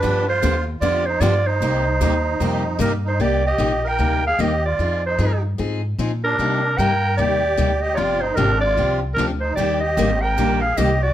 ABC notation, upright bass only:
X:1
M:4/4
L:1/8
Q:"Swing" 1/4=151
K:Cm
V:1 name="Upright bass" clef=bass
G,,2 E,,2 F,,2 G,,2 | C,,2 E,,2 F,,2 G,,2 | C,,2 B,,,2 D,,2 E,,2 | F,,2 G,,2 A,,2 B,,2 |
C,2 G,,2 E,,2 D,,2 | G,,,2 A,,,2 C,,2 D,,2 | E,,2 A,,,2 B,,,2 C,,2 |]